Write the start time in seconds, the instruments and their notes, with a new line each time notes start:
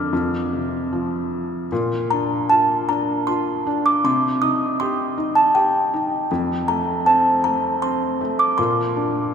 Already playing: felt piano F2 D3, music box F6
0.13 felt piano F2
0.53 felt piano C3
0.93 felt piano F3
1.72 felt piano A#2
2.10 felt piano D4, music box A#5
2.49 felt piano F4, music box A5
2.89 felt piano D4, music box A#5
3.27 felt piano F4, music box C6
3.67 felt piano D4
3.86 music box D6
4.04 felt piano C3, music box C6
4.42 felt piano D#4, music box D#6
4.80 felt piano G4, music box C6
5.18 felt piano D#4
5.35 music box A5
5.55 felt piano G4, music box G5
5.94 felt piano D#4
6.31 felt piano F2
6.68 felt piano A3, music box A#5
7.06 felt piano C4, music box A5
7.44 felt piano A3, music box A#5
7.82 felt piano C4, music box C6
8.21 felt piano A3
8.39 music box D6
8.58 felt piano A#2, music box C6
8.96 felt piano D4